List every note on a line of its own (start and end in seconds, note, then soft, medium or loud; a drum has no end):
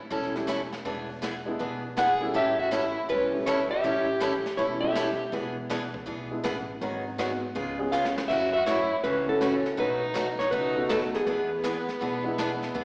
0.10 0.70 E1 medium
0.10 0.33 E3 medium
0.10 0.33 G3 medium
0.10 0.33 C#4 medium
0.10 0.33 E4 medium
0.10 0.33 A4 medium
0.10 brush sweep soft
0.10 kick soft
0.23 snare soft
0.34 0.46 G3 medium
0.34 0.46 A3 medium
0.34 0.47 C#4 medium
0.34 0.47 E4 medium
0.34 snare soft
0.47 0.59 E3 medium
0.47 0.60 G3 medium
0.47 0.60 C#4 medium
0.47 0.60 E4 medium
0.47 0.60 A4 medium
0.47 snare medium
0.47 hi-hat pedal medium
0.73 snare soft
0.85 1.45 E1 medium
0.85 1.07 E3 medium
0.85 1.07 B3 medium
0.85 1.08 D4 medium
0.85 1.08 G#4 medium
0.85 brush sweep soft
0.85 kick soft
1.22 1.34 E3 medium
1.22 1.34 B3 medium
1.22 1.34 D4 medium
1.22 1.35 G#4 medium
1.22 snare medium
1.22 hi-hat pedal medium
1.46 1.58 G#3 medium
1.46 1.58 B3 medium
1.46 1.59 D4 medium
1.46 1.59 E4 medium
1.59 2.20 B1 medium
1.59 1.82 E3 medium
1.59 1.82 B3 medium
1.59 1.82 D4 medium
1.59 1.82 G#4 medium
1.59 brush sweep soft
1.59 kick soft
1.97 2.09 E3 medium
1.97 2.09 B3 medium
1.97 2.09 D4 medium
1.97 2.09 G#4 medium
1.97 2.33 G#4 medium
1.97 2.33 F#5 loud
1.97 snare medium
1.97 hi-hat pedal medium
2.20 2.33 G3 medium
2.20 2.33 A3 medium
2.20 2.33 C#4 medium
2.20 2.33 E4 medium
2.34 2.94 A1 medium
2.34 2.56 E3 medium
2.34 2.56 G3 medium
2.34 2.57 C#4 medium
2.34 2.57 E4 medium
2.34 2.58 G4 medium
2.34 2.57 A4 medium
2.34 2.58 E5 loud
2.34 brush sweep soft
2.34 kick soft
2.59 2.75 F#4 medium
2.59 2.72 E5 medium
2.71 2.83 E3 medium
2.71 2.83 G3 medium
2.71 2.83 C#4 medium
2.71 2.84 E4 medium
2.71 3.10 E4 medium
2.71 2.84 A4 medium
2.71 3.10 C#5 medium
2.71 snare medium
2.71 hi-hat pedal medium
3.09 3.69 E1 medium
3.09 3.31 E3 medium
3.09 3.31 G3 medium
3.09 3.31 C#4 medium
3.09 3.44 C#4 medium
3.09 3.32 E4 medium
3.09 3.32 A4 medium
3.09 3.48 B4 medium
3.09 brush sweep soft
3.09 kick soft
3.33 3.45 G3 medium
3.33 3.45 A3 medium
3.33 3.45 C#4 medium
3.33 3.46 E4 medium
3.46 3.58 E3 medium
3.46 3.58 G3 medium
3.46 3.58 C#4 medium
3.46 3.69 E4 medium
3.46 3.59 E4 medium
3.46 3.59 A4 medium
3.46 3.69 C#5 medium
3.46 snare medium
3.46 hi-hat pedal medium
3.71 4.54 G4 medium
3.71 4.57 E5 medium
3.84 4.44 A1 medium
3.84 4.06 E3 medium
3.84 4.06 G3 medium
3.84 4.06 C#4 medium
3.84 4.06 E4 medium
3.84 4.06 A4 medium
3.84 brush sweep medium
3.84 kick soft
4.20 4.32 E3 medium
4.20 4.32 G3 medium
4.20 4.33 C#4 medium
4.20 4.33 E4 medium
4.20 4.33 A4 medium
4.20 snare medium
4.20 hi-hat pedal medium
4.46 snare soft
4.57 5.18 E1 medium
4.57 4.80 E3 medium
4.57 4.80 G3 medium
4.57 4.80 C#4 medium
4.57 4.69 E4 medium
4.57 4.80 E4 medium
4.57 4.81 A4 medium
4.57 4.64 C#5 medium
4.57 brush sweep soft
4.57 kick soft
4.81 4.93 G3 medium
4.81 4.94 A3 medium
4.81 4.94 C#4 medium
4.81 4.94 E4 medium
4.81 5.29 G4 medium
4.81 5.28 E5 medium
4.95 5.07 E3 medium
4.95 5.07 G3 medium
4.95 5.07 C#4 medium
4.95 5.07 E4 medium
4.95 5.07 A4 medium
4.95 snare medium
4.95 hi-hat pedal medium
5.32 5.92 E1 medium
5.32 5.54 E3 medium
5.32 5.55 B3 medium
5.32 5.55 D4 medium
5.32 5.55 G#4 medium
5.32 brush sweep soft
5.32 kick soft
5.70 5.81 E3 medium
5.70 5.82 B3 medium
5.70 5.82 D4 medium
5.70 5.82 G#4 medium
5.70 snare medium
5.70 hi-hat pedal soft
5.94 kick medium
6.06 6.38 B1 medium
6.06 6.28 E3 medium
6.06 6.29 B3 medium
6.06 6.29 D4 medium
6.06 6.29 G#4 medium
6.06 brush sweep soft
6.06 kick soft
6.31 6.42 G#3 medium
6.31 6.43 B3 medium
6.31 6.43 D4 medium
6.31 6.43 E4 medium
6.44 6.76 A1 medium
6.44 6.55 E3 medium
6.44 6.56 B3 medium
6.44 6.56 D4 medium
6.44 6.56 G#4 medium
6.44 snare medium
6.44 hi-hat pedal medium
6.81 7.41 G#1 medium
6.81 7.03 D#3 medium
6.81 7.03 F#3 medium
6.81 7.04 B3 medium
6.81 7.04 D#4 medium
6.81 7.04 G#4 medium
6.81 brush sweep soft
6.81 kick soft
7.18 7.30 D#3 medium
7.18 7.30 F#3 medium
7.18 7.40 G#3 medium
7.18 7.40 B3 medium
7.18 7.30 B3 medium
7.18 7.41 D#4 medium
7.18 7.31 D#4 medium
7.18 7.41 F#4 medium
7.18 7.31 G#4 medium
7.18 snare medium
7.18 hi-hat pedal medium
7.55 8.15 C#2 loud
7.55 7.77 C#3 medium
7.55 7.78 G#3 medium
7.55 7.78 B3 medium
7.55 7.78 F4 medium
7.55 7.78 G#4 medium
7.55 brush sweep soft
7.55 kick soft
7.79 7.91 G#3 medium
7.79 7.91 B3 medium
7.79 7.91 C#4 medium
7.79 7.92 G#4 medium
7.92 8.04 C#3 medium
7.92 8.04 G#3 medium
7.92 8.04 B3 medium
7.92 8.27 C#4 medium
7.92 8.05 F4 medium
7.92 8.05 G#4 medium
7.92 8.28 F5 medium
7.92 hi-hat pedal medium
8.05 snare medium
8.18 snare medium
8.28 8.89 F#2 medium
8.28 8.51 C#3 medium
8.28 8.52 E3 medium
8.28 8.52 A3 medium
8.28 8.52 C#4 medium
8.28 8.53 F#4 medium
8.28 8.52 F#4 medium
8.28 8.51 E5 loud
8.28 brush sweep soft
8.28 kick medium
8.28 crash medium
8.53 8.67 F#4 medium
8.53 8.66 E5 loud
8.66 8.78 C#3 medium
8.66 8.78 E3 medium
8.66 8.79 A3 medium
8.66 8.79 C#4 medium
8.66 9.02 E4 medium
8.66 8.79 F#4 medium
8.66 9.01 C#5 medium
8.66 snare medium
8.66 hi-hat pedal medium
9.04 9.63 C#2 medium
9.04 9.26 C#3 medium
9.04 9.26 E3 medium
9.04 9.26 A3 medium
9.04 9.26 C#4 medium
9.04 9.27 C#4 medium
9.04 9.27 F#4 medium
9.04 9.29 B4 medium
9.04 brush sweep soft
9.04 kick soft
9.27 9.75 A3 medium
9.27 9.75 C#4 medium
9.27 9.75 E4 medium
9.27 9.76 F#4 medium
9.27 9.79 A4 medium
9.41 9.53 C#3 medium
9.41 9.53 E3 medium
9.41 9.53 A3 medium
9.41 9.53 C#4 medium
9.41 9.54 F#4 medium
9.41 snare medium
9.41 hi-hat pedal medium
9.66 snare soft
9.77 10.08 B1 medium
9.77 10.00 B2 medium
9.77 10.00 F#3 medium
9.77 10.00 A3 medium
9.77 10.00 D#4 medium
9.77 10.36 D#4 medium
9.77 10.00 F#4 medium
9.77 10.42 B4 medium
9.77 brush sweep medium
9.77 kick soft
10.14 10.47 B1 medium
10.14 10.26 B2 medium
10.14 10.26 F#3 medium
10.14 10.27 A3 medium
10.14 10.27 D#4 medium
10.14 10.27 F#4 medium
10.14 snare medium
10.14 hi-hat pedal medium
10.39 10.52 D#4 medium
10.39 10.53 C#5 medium
10.39 snare soft
10.51 10.84 C#2 medium
10.51 10.74 B2 medium
10.51 10.74 F#3 medium
10.51 10.75 A3 medium
10.51 10.75 D#4 medium
10.51 10.88 D#4 medium
10.51 10.75 F#4 medium
10.51 10.89 B4 medium
10.51 brush sweep medium
10.51 kick soft
10.75 11.24 A3 medium
10.75 11.24 B3 medium
10.75 11.24 D#4 medium
10.75 11.24 F#4 medium
10.89 11.21 D#2 medium
10.89 11.01 B2 medium
10.89 11.01 F#3 medium
10.89 11.01 A3 medium
10.89 11.01 B3 medium
10.89 11.02 D#4 medium
10.89 11.02 F#4 medium
10.89 10.96 A4 medium
10.89 snare medium
10.89 hi-hat pedal medium
11.02 snare soft
11.14 12.84 B3 medium
11.14 12.84 G#4 medium
11.14 snare soft
11.27 11.86 E2 loud
11.27 11.49 E3 medium
11.27 11.49 B3 medium
11.27 11.49 D4 medium
11.27 11.49 G#4 medium
11.27 brush sweep soft
11.27 kick soft
11.64 11.75 E3 medium
11.64 11.76 B3 medium
11.64 11.76 D4 medium
11.64 11.76 G#4 medium
11.64 snare medium
11.64 hi-hat pedal medium
11.88 snare soft
12.01 12.61 B1 medium
12.01 12.23 E3 medium
12.01 12.23 B3 medium
12.01 12.23 D4 medium
12.01 12.24 G#4 medium
12.01 brush sweep medium
12.01 kick soft
12.24 12.72 G#3 medium
12.24 12.72 B3 medium
12.24 12.73 D4 medium
12.24 12.73 E4 medium
12.38 12.50 E3 medium
12.38 12.50 B3 medium
12.38 12.50 D4 medium
12.38 12.50 G#4 medium
12.38 snare medium
12.38 hi-hat pedal medium
12.62 snare soft
12.74 12.84 E2 medium
12.74 12.84 E3 medium
12.74 12.84 B3 medium
12.74 12.84 D4 medium
12.74 12.84 G#4 medium
12.74 brush sweep medium
12.74 kick soft